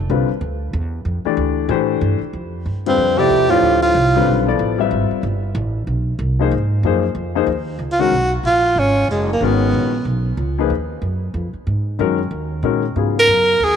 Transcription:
0.09 upright bass C2, grand piano D3 G3 C4 F4 B4
0.29 muted upright bass stroke
0.41 upright bass D2
0.73 upright bass E2
1.05 upright bass F2
1.25 grand piano E3 A3 D4 G4 D5, muted upright bass stroke
1.37 upright bass D2
1.69 upright bass A2, grand piano E3 A3 D4 G4 C5
2.01 upright bass G2
2.21 muted upright bass stroke
2.33 upright bass F2
2.66 upright bass G2
2.86 bass clarinet F2, grand piano D3 G3 C4 F4 B4, tenor saxophone C4
2.98 upright bass F2
3.17 bass clarinet C3, grand piano F3 B3 E4 A4 D5, tenor saxophone G4
3.30 upright bass E2
3.49 bass clarinet A2, grand piano F3 A3 D4 G4 D5, tenor saxophone F4
3.62 upright bass D2
3.81 bass clarinet A2, tenor saxophone F4
3.95 upright bass C2
4.15 grand piano D3 G3 C4 F4 B4
4.26 upright bass B1
4.47 grand piano F3 B3 E4 A4 D5
4.59 upright bass A1
4.78 grand piano G3 C4 F4 B4 E5
4.91 upright bass G#1
5.11 muted upright bass stroke
5.23 upright bass G1
5.55 upright bass A1
5.87 upright bass B1
6.19 upright bass C2
6.39 grand piano F3 A#3 D#4 G#4 C5
6.51 upright bass G#2
6.83 upright bass F#2, grand piano F3 A#3 D#4 G#4 C5
7.15 upright bass F2
7.35 grand piano F3 A#3 D#4 G#4 C5
7.47 upright bass D#2
7.79 upright bass C#2
7.92 tenor saxophone F4
7.99 grand piano D#3 G#3 C#4 F#4 A#4, tenor saxophone F#4
8.12 upright bass B1
8.43 upright bass A#1, tenor saxophone F4
8.76 upright bass G#1, tenor saxophone C#4
9.08 upright bass F#1, tenor saxophone G#3
9.33 tenor saxophone A#3
9.41 upright bass G#1, grand piano D#3 G#3 C#4 F#4 A#4
9.45 tenor saxophone B3
9.73 upright bass A#1
10.05 upright bass B1
10.37 upright bass C#2
10.58 grand piano F3 A#3 D#4 G#4 B4
10.70 upright bass D#2
11.02 upright bass F#2
11.34 upright bass F2
11.53 muted upright bass stroke
11.67 upright bass G#2
11.99 upright bass F#2, grand piano D#3 G#3 C#4 F#4 A#4
12.31 upright bass D#2
12.63 upright bass A#2, grand piano D#3 G#3 C#4 F#4 A#4
12.96 upright bass G#2, grand piano C#3 F#3 B3 F4 G#4
13.19 tenor saxophone A#4
13.27 upright bass F#2
13.60 upright bass D#2, tenor saxophone G#4

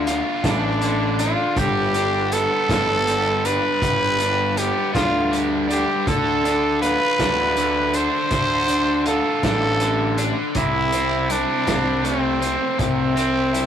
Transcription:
Already playing: picked electric bass D2, overdriven electric guitar D3 D4, trumpet F4
0.07 overdriven electric guitar F4, closed hi-hat
0.44 picked electric bass A1, trumpet D4, overdriven electric guitar D4, kick, snare, closed hi-hat
0.81 overdriven electric guitar D3, closed hi-hat
1.19 overdriven electric guitar D4, trumpet F4, closed hi-hat
1.56 picked electric bass G1, overdriven electric guitar G3, trumpet G4, kick, closed hi-hat
1.94 overdriven electric guitar D4, closed hi-hat
2.32 overdriven electric guitar B3, trumpet A4, closed hi-hat
2.69 picked electric bass G1, overdriven electric guitar D4, kick, snare, closed hi-hat
3.07 overdriven electric guitar G3, closed hi-hat
3.44 overdriven electric guitar D4, trumpet B4, closed hi-hat
3.82 picked electric bass G1, overdriven electric guitar G3, kick, closed hi-hat
4.19 overdriven electric guitar D4, closed hi-hat
4.57 overdriven electric guitar B3, trumpet G4, closed hi-hat
4.94 picked electric bass D2, overdriven electric guitar D4, trumpet F4, kick, snare, closed hi-hat
5.32 overdriven electric guitar G3, closed hi-hat
5.69 overdriven electric guitar D4, trumpet G4, closed hi-hat
6.07 picked electric bass D2, overdriven electric guitar D3, trumpet A4, kick, closed hi-hat
6.45 overdriven electric guitar D4, closed hi-hat
6.82 overdriven electric guitar F4, trumpet B4, closed hi-hat
7.19 picked electric bass D2, overdriven electric guitar D4, kick, snare, closed hi-hat
7.57 overdriven electric guitar D3, closed hi-hat
7.93 overdriven electric guitar D4, trumpet C5, closed hi-hat
8.31 picked electric bass D2, overdriven electric guitar D3, kick, closed hi-hat
8.68 overdriven electric guitar D4, closed hi-hat
9.06 overdriven electric guitar F4, trumpet A4, closed hi-hat
9.43 picked electric bass A1, overdriven electric guitar D4, trumpet A4, kick, snare, closed hi-hat
9.80 overdriven electric guitar D3, closed hi-hat
10.18 overdriven electric guitar D4, closed hi-hat
10.55 picked electric bass C2, overdriven electric guitar C3, trumpet E4, kick, closed hi-hat
10.92 overdriven electric guitar C4, closed hi-hat
11.29 trumpet D4, overdriven electric guitar E4, closed hi-hat
11.67 picked electric bass C2, overdriven electric guitar C4, kick, snare, closed hi-hat
12.04 overdriven electric guitar A3, trumpet C4, closed hi-hat
12.41 overdriven electric guitar C4, closed hi-hat
12.78 picked electric bass C2, overdriven electric guitar C3, trumpet C4, kick, closed hi-hat
13.16 overdriven electric guitar C4, closed hi-hat
13.53 overdriven electric guitar E4, closed hi-hat

